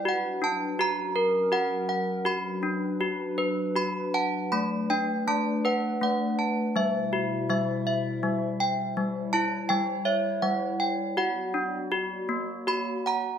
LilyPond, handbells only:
\new Staff \with { instrumentName = "Handbells" } { \time 3/4 \key b \minor \tempo 4 = 81 << { fis''8 a''8 ais''4 fis''4 | b''2 b''8 a''8 | b''8 g''8 a''8 fis''8 fis''4 | e''4 e''4. r8 |
r8 a''8 g''8 e''8 fis''8 r8 | fis''4 r4 b''8 ais''8 | } \\ { fis'8 d'8 fis'8 ais'8 fis'8 fis''8 | fis'8 d'8 fis'8 b'8 fis'8 fis''8 | a8 d'8 a8 b'8 a8 a''8 | g8 fis'8 g8 e''8 g8 g''8 |
g8 e'8 g8 cis''8 g8 g''8 | fis'8 d'8 fis'8 ais8 fis'8 fis''8 | } >> }